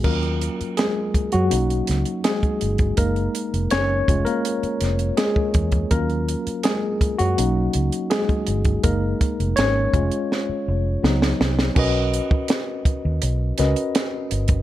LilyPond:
<<
  \new Staff \with { instrumentName = "Tine electric piano" } { \time 4/4 \key b \lydian \tempo 4 = 82 << { <ais ais'>4 <gis gis'>8. <fis fis'>4~ <fis fis'>16 <gis gis'>4 | ais'4 <cis' cis''>8. <ais ais'>4~ <ais ais'>16 <gis gis'>4 | <ais ais'>4 <gis gis'>8. <fis fis'>4~ <fis fis'>16 <gis gis'>4 | ais'4 <cis' cis''>2~ <cis' cis''>8 r8 |
<cis' fis' ais' b' dis''>2~ <cis' fis' ais' b' dis''>8 <cis' fis' ais' b' dis''>4. | } \\ { <fis cis' eis'>2 <ais cis' dis'>4. r8 | <gis ais dis'>4. <gis cis' eis'>2~ <gis cis' eis'>8 | <fis cis' eis'>4. r8 <ais cis' dis'>4. r8 | <gis ais dis'>4. <gis cis' eis'>8 r4 <fis b dis'>8 r8 |
r1 | } >> }
  \new Staff \with { instrumentName = "Fingered electric bass" } { \clef bass \time 4/4 \key b \lydian dis,8. r4 fis,16 b,,8 cis,16 r8. g,,8 | fis,,8 r16 eis,,16 fis,,8 eis,,16 r8. eis,,8 r8 e,8 | dis,8. r4 fis,16 b,,8 cis,16 r8. g,,8 | fis,,8 r16 eis,,16 gis,,8 eis,,16 r8. eis,,8 cis,8 bis,,8 |
b,,8. r4 dis,16 b,,8 cis,16 r8. g,,8 | }
  \new DrumStaff \with { instrumentName = "Drums" } \drummode { \time 4/4 <cymc bd>16 hh16 hh16 hh16 <hh sn>8 <hh bd>16 hh16 hh16 hh16 <hh sn>16 hh16 <hh sn>16 <hh bd>16 hh16 <hh bd>16 | <hh bd>16 hh16 hh16 hh16 <hh sn>8 <hh bd>16 hh16 hh16 hh16 <hh sn>16 hh16 <hh sn>16 bd16 <hh bd>16 <hh bd>16 | <hh bd>16 hh16 hh16 hh16 <hh sn>8 <hh bd>16 hh16 hh8 hh16 hh16 <hh sn>16 <hh bd>16 hh16 <hh bd>16 | <hh bd>8 <hh bd>16 hh16 <hh sn>8 <hh bd>16 hh16 sn4 sn16 sn16 sn16 sn16 |
<cymc bd>8 hh16 bd16 <hh sn>8 <hh bd>8 hh8 <hh sn>16 hh16 <hh sn>8 hh16 <hh bd>16 | }
>>